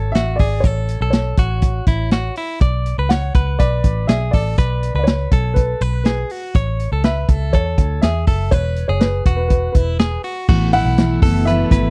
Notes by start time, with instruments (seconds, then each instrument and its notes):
Already playing: picked electric bass G#1, clean electric guitar A4
0.12 picked electric bass A1, clean electric guitar F#4, upright piano E5, snare, closed hi-hat
0.36 picked electric bass G#1, upright piano D5, kick, open hi-hat
0.40 clean electric guitar G#4
0.60 picked electric bass A1, upright piano C#5, kick, closed hi-hat
0.65 clean electric guitar A4
0.89 closed hi-hat
1.01 picked electric bass B1, clean electric guitar A4
1.10 upright piano C#5, snare, closed hi-hat
1.37 picked electric bass A1, clean electric guitar F#4, kick, closed hi-hat
1.62 kick, closed hi-hat
1.87 picked electric bass A1, clean electric guitar E4, kick, closed hi-hat
2.11 clean electric guitar F#4, snare, closed hi-hat
2.36 clean electric guitar E4, open hi-hat
2.61 picked electric bass B1, clean electric guitar D5, kick, closed hi-hat
2.86 closed hi-hat
2.98 picked electric bass C#2, clean electric guitar B4
3.09 clean electric guitar C#5, upright piano F#5, snare, closed hi-hat
3.34 picked electric bass C#2, clean electric guitar B4, kick, closed hi-hat
3.59 picked electric bass B1, clean electric guitar B4, upright piano D5, kick, closed hi-hat
3.84 picked electric bass A1, kick, closed hi-hat
4.07 picked electric bass B1, clean electric guitar G#4, upright piano E5, snare, closed hi-hat
4.31 picked electric bass A1, clean electric guitar A4, upright piano D5, kick, open hi-hat
4.58 picked electric bass B1, clean electric guitar B4, kick, closed hi-hat
4.83 closed hi-hat
4.95 picked electric bass C#2, clean electric guitar B4
4.99 upright piano D5
5.04 upright piano C#5, snare, closed hi-hat
5.31 picked electric bass B1, clean electric guitar A4, kick, closed hi-hat
5.54 upright piano B4, kick, closed hi-hat
5.81 picked electric bass B1, clean electric guitar B4, closed hi-hat
6.04 clean electric guitar G#4, upright piano B4, snare, closed hi-hat
6.30 clean electric guitar F#4, open hi-hat
6.55 picked electric bass A1, clean electric guitar C#5, kick, closed hi-hat
6.80 closed hi-hat
6.92 picked electric bass C#2, clean electric guitar A4
7.04 clean electric guitar B4, upright piano E5, snare, closed hi-hat
7.29 picked electric bass C#2, clean electric guitar A4, kick, closed hi-hat
7.53 picked electric bass E2, clean electric guitar A4, upright piano C#5, kick, closed hi-hat
7.78 picked electric bass D2, kick, closed hi-hat
8.02 picked electric bass E2, clean electric guitar G#4, upright piano E5, snare, closed hi-hat
8.27 picked electric bass F#1, clean electric guitar A4, kick, open hi-hat
8.51 picked electric bass E1, clean electric guitar B4, upright piano C#5, kick, closed hi-hat
8.76 closed hi-hat
8.88 picked electric bass F#1, clean electric guitar G#4, upright piano C#5
9.00 upright piano B4, snare, closed hi-hat
9.26 picked electric bass E1, clean electric guitar F#4, kick, closed hi-hat
9.36 upright piano B4
9.48 upright piano B4, kick, closed hi-hat
9.72 picked electric bass E1, clean electric guitar E4, upright piano B4, kick, closed hi-hat
9.99 clean electric guitar G#4, snare, closed hi-hat
10.24 clean electric guitar F#4, open hi-hat
10.48 picked electric bass A1, steel-string acoustic guitar A2 E3 A3 B3 E4, analog synth pad B2 E3 A3 E4 A4, clean electric guitar F#4, kick, crash
10.73 steel-string acoustic guitar A3 B3 E4, clean electric guitar E4, upright piano F#5, hi-hat pedal, open hi-hat
10.85 picked electric bass B1
10.98 steel-string acoustic guitar E3 A3 B3 E4, snare, hi-hat pedal, open hi-hat
11.22 picked electric bass F#1, steel-string acoustic guitar A3 B3 E4, clean electric guitar A4, kick, hi-hat pedal, open hi-hat
11.45 steel-string acoustic guitar A2 E3 A3 B3 E4, clean electric guitar B4, upright piano E5, hi-hat pedal, open hi-hat
11.71 picked electric bass G#1, steel-string acoustic guitar A3 B3 E4, clean electric guitar B4, kick, hi-hat pedal, open hi-hat